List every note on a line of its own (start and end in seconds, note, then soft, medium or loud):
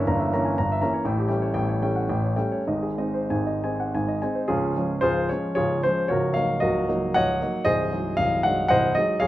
0.00 0.07 G1 medium
0.00 0.07 G2 medium
0.00 0.34 E3 medium
0.00 0.34 A#3 soft
0.00 0.35 C#4 medium
0.00 0.61 A#4 medium
0.00 0.15 C#5 medium
0.00 0.20 E5 medium
0.07 0.32 G1 medium
0.07 0.32 G2 medium
0.07 0.28 A#5 medium
0.20 0.40 E5 medium
0.33 0.56 E3 medium
0.33 0.56 A#3 medium
0.33 0.57 C#4 medium
0.33 0.53 A#5 medium
0.45 0.58 G#5 soft
0.58 0.82 G1 medium
0.58 0.82 G2 medium
0.58 0.78 A#5 medium
0.72 0.91 E5 medium
0.81 1.04 E3 medium
0.81 1.04 A#3 medium
0.81 1.04 C#4 medium
0.81 1.01 A#5 medium
0.94 1.06 C#5 medium
1.05 1.29 A1 medium
1.05 1.29 A2 medium
1.05 1.25 G5 medium
1.18 1.38 G4 medium
1.28 1.52 G3 soft
1.28 1.52 A3 soft
1.28 1.53 C#4 medium
1.28 1.50 G5 medium
1.42 1.64 C#5 medium
1.54 1.81 A1 medium
1.54 1.81 A2 medium
1.54 1.76 G5 medium
1.68 1.90 C#5 medium
1.82 2.07 G3 soft
1.82 2.07 A3 soft
1.82 2.07 C#4 medium
1.82 2.04 G5 medium
1.96 2.10 F#5 soft
2.09 2.37 A1 medium
2.09 2.37 A2 medium
2.09 2.32 G5 medium
2.23 2.46 C#5 soft
2.36 2.64 G3 soft
2.36 2.63 A3 soft
2.36 2.64 C#4 medium
2.36 2.60 G5 medium
2.52 2.67 C#5 soft
2.67 2.97 G#1 medium
2.67 2.97 G#2 medium
2.67 2.92 D#5 medium
2.82 3.08 G#4 soft
2.98 3.28 G#3 soft
2.98 3.28 C4 soft
2.98 3.28 D#4 medium
2.98 3.25 D#5 medium
3.14 3.41 C5 soft
3.30 3.63 G#1 medium
3.30 3.63 G#2 medium
3.30 3.57 G#5 medium
3.47 3.73 D#5 soft
3.63 3.90 G#3 soft
3.63 3.91 C4 soft
3.63 3.91 D#4 soft
3.63 3.88 G#5 medium
3.80 3.94 F#5 soft
3.94 4.21 G#1 medium
3.94 4.21 G#2 medium
3.94 4.16 G#5 medium
4.08 4.29 D#5 soft
4.22 4.46 G#3 soft
4.22 4.46 C4 soft
4.22 4.46 D#4 medium
4.22 4.43 G#5 medium
4.35 4.48 C5 soft
4.48 4.74 C#1 soft
4.48 4.74 C#2 medium
4.48 4.76 C#4 medium
4.48 4.99 F4 medium
4.48 5.01 G#4 medium
4.77 5.00 F3 soft
4.77 5.01 G#3 soft
4.77 5.01 C#4 soft
5.01 5.29 C#1 medium
5.01 5.29 C#2 medium
5.01 5.28 F4 medium
5.01 5.28 G#4 medium
5.01 5.29 C5 medium
5.29 5.55 F3 soft
5.29 5.55 G#3 soft
5.29 5.55 C#4 soft
5.29 5.54 C#5 medium
5.55 5.82 C#1 medium
5.55 5.82 C#2 medium
5.55 5.81 F4 medium
5.55 5.80 G#4 medium
5.55 5.82 C#5 medium
5.83 6.07 F3 soft
5.83 6.07 G#3 soft
5.83 6.07 C#4 soft
5.83 6.08 C5 medium
6.08 6.34 C#1 medium
6.08 6.34 C#2 medium
6.08 6.33 F#4 medium
6.08 6.33 A#4 medium
6.08 6.34 C#5 medium
6.34 6.59 F#3 soft
6.34 6.59 A#3 soft
6.34 6.60 D#4 soft
6.34 6.61 F5 medium
6.60 6.88 C#1 medium
6.60 6.88 C#2 medium
6.60 7.12 F#4 medium
6.60 7.12 A#4 medium
6.60 7.14 D#5 medium
6.88 7.12 F#3 soft
6.88 7.12 A#3 soft
6.88 7.13 D#4 soft
7.14 7.40 C#1 medium
7.14 7.40 C#2 medium
7.14 7.62 C#5 medium
7.14 7.62 D#5 medium
7.14 7.65 F#5 loud
7.42 7.64 F#3 soft
7.42 7.64 A#3 soft
7.42 7.64 D#4 medium
7.65 7.90 C1 soft
7.65 7.90 C2 medium
7.65 8.14 G#4 medium
7.65 8.14 C5 medium
7.65 8.17 D#5 medium
7.92 8.16 F#3 soft
7.92 8.16 G#3 soft
7.92 8.16 D#4 soft
8.17 8.45 C1 medium
8.17 8.45 C2 soft
8.17 8.45 F5 loud
8.43 8.69 F#3 soft
8.43 8.69 G#3 soft
8.43 8.69 D#4 soft
8.43 8.67 F#5 medium
8.68 8.96 C1 medium
8.68 8.96 C2 medium
8.68 8.94 C5 medium
8.68 8.93 D#5 medium
8.68 8.95 F#5 loud
8.95 9.18 F#3 soft
8.95 9.19 G#3 soft
8.95 9.19 D#4 medium
8.95 9.20 D#5 medium
9.20 9.27 C#1 medium
9.20 9.27 C#2 medium
9.20 9.27 G#4 medium
9.20 9.27 C#5 medium
9.20 9.27 F5 loud